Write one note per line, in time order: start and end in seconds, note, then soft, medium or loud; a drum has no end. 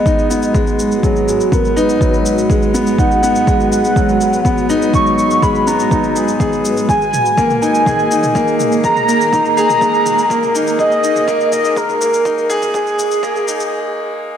0.00 0.55 G#3 medium
0.00 6.85 G#3 medium
0.00 0.30 B3 medium
0.00 6.85 F#4 medium
0.00 6.85 B4 medium
0.00 0.75 D#5 loud
0.06 0.29 D#4 medium
0.06 kick medium
0.06 shaker soft
0.19 shaker soft
0.30 0.53 B3 medium
0.30 shaker medium
0.42 shaker soft
0.55 0.78 G#3 medium
0.55 kick medium
0.55 shaker soft
0.67 shaker soft
0.79 shaker medium
0.92 shaker soft
1.03 1.27 F#3 medium
1.03 1.55 G#4 medium
1.03 kick medium
1.03 shaker soft
1.16 shaker soft
1.28 1.51 G#3 medium
1.28 shaker medium
1.40 shaker soft
1.52 1.75 B3 medium
1.52 1.79 A#4 medium
1.52 kick medium
1.52 shaker soft
1.65 shaker soft
1.77 2.00 D#4 loud
1.77 2.26 B4 loud
1.77 shaker medium
1.89 shaker soft
2.01 2.15 F#3 medium
2.01 kick medium
2.01 shaker soft
2.14 shaker soft
2.26 shaker medium
2.38 shaker soft
2.50 2.64 G#3 medium
2.50 kick medium
2.50 shaker soft
2.62 shaker soft
2.74 2.97 B3 medium
2.74 shaker medium
2.87 shaker soft
2.98 3.22 D#4 medium
2.98 3.68 F#5 loud
2.98 kick medium
2.98 shaker soft
3.11 shaker soft
3.23 3.46 B3 medium
3.23 shaker medium
3.35 shaker soft
3.47 3.71 G#3 medium
3.47 kick loud
3.47 shaker soft
3.60 shaker soft
3.72 4.65 F#5 loud
3.72 shaker medium
3.85 shaker soft
3.96 4.20 F#3 medium
3.96 kick loud
3.96 shaker soft
4.09 shaker soft
4.21 4.44 G#3 medium
4.21 shaker medium
4.33 shaker soft
4.45 4.68 B3 medium
4.45 kick medium
4.45 shaker soft
4.58 shaker soft
4.70 4.93 D#4 loud
4.70 shaker medium
4.82 shaker soft
4.94 5.08 F#3 medium
4.94 5.44 C#6 loud
4.94 kick loud
4.94 shaker soft
5.06 shaker soft
5.19 shaker medium
5.31 shaker soft
5.43 5.57 G#3 medium
5.43 5.69 B5 loud
5.43 kick loud
5.43 shaker soft
5.55 shaker soft
5.67 5.90 B3 medium
5.67 6.16 A#5 medium
5.67 shaker medium
5.79 shaker soft
5.91 6.15 D#4 medium
5.91 kick loud
5.91 shaker soft
6.04 shaker soft
6.16 6.39 G#4 medium
6.16 shaker medium
6.28 shaker soft
6.40 6.63 G#4 medium
6.40 kick medium
6.40 shaker soft
6.53 shaker soft
6.65 shaker medium
6.77 shaker soft
6.89 13.68 D#3 medium
6.89 7.03 G#3 medium
6.89 13.68 A#3 medium
6.89 13.68 G#4 medium
6.89 7.58 G#5 loud
6.89 kick medium
6.89 shaker soft
7.02 shaker soft
7.14 mid tom medium
7.14 shaker medium
7.26 shaker soft
7.38 7.52 A#3 medium
7.38 kick loud
7.38 shaker soft
7.50 mid tom medium
7.50 shaker soft
7.62 7.85 D#4 medium
7.62 8.56 G#5 loud
7.62 shaker medium
7.75 shaker soft
7.86 8.10 G#4 medium
7.86 kick loud
7.86 mid tom medium
7.86 shaker soft
7.99 shaker soft
8.11 8.34 D#4 medium
8.11 shaker medium
8.23 mid tom medium
8.23 shaker soft
8.35 8.58 A#3 loud
8.35 kick loud
8.35 shaker soft
8.48 shaker soft
8.60 mid tom medium
8.60 shaker medium
8.72 shaker soft
8.84 9.07 G#3 medium
8.84 9.53 A#5 loud
8.84 kick medium
8.84 shaker soft
8.96 mid tom medium
8.96 shaker soft
9.08 9.32 A#3 medium
9.08 shaker medium
9.21 shaker soft
9.33 9.56 D#4 medium
9.33 kick medium
9.33 mid tom medium
9.33 shaker soft
9.45 shaker soft
9.57 9.80 G#4 loud
9.57 10.51 A#5 loud
9.57 shaker medium
9.70 mid tom medium
9.70 shaker soft
9.81 9.96 G#3 medium
9.81 kick medium
9.81 shaker soft
9.94 shaker soft
10.06 mid tom medium
10.06 shaker medium
10.18 shaker soft
10.30 10.44 A#3 loud
10.30 kick medium
10.30 shaker soft
10.43 mid tom medium
10.43 shaker soft
10.55 10.78 D#4 medium
10.55 shaker medium
10.67 shaker soft
10.79 11.02 G#4 medium
10.79 11.49 D#5 loud
10.79 kick medium
10.79 mid tom medium
10.79 shaker soft
10.92 shaker soft
11.03 11.27 D#4 medium
11.03 shaker medium
11.16 mid tom medium
11.16 shaker soft
11.28 11.51 A#3 loud
11.28 kick medium
11.28 shaker soft
11.40 shaker soft
11.52 11.79 D#5 loud
11.52 mid tom medium
11.52 shaker medium
11.65 shaker soft
11.77 12.00 G#3 medium
11.77 12.50 A#4 medium
11.77 kick medium
11.77 shaker soft
11.89 mid tom medium
11.89 shaker soft
12.01 12.24 A#3 medium
12.01 shaker medium
12.14 shaker soft
12.25 12.49 D#4 medium
12.25 kick loud
12.25 mid tom medium
12.25 shaker soft
12.38 shaker soft
12.50 12.73 G#4 loud
12.50 shaker medium
12.62 mid tom medium
12.62 shaker soft
12.74 12.88 G#3 medium
12.74 14.17 G#4 loud
12.74 kick loud
12.74 shaker soft
12.87 shaker soft
12.99 mid tom medium
12.99 shaker medium
13.11 shaker soft
13.23 13.37 A#3 loud
13.23 kick loud
13.23 shaker soft
13.36 mid tom medium
13.36 shaker soft
13.48 13.71 D#4 medium
13.48 shaker medium
13.60 shaker soft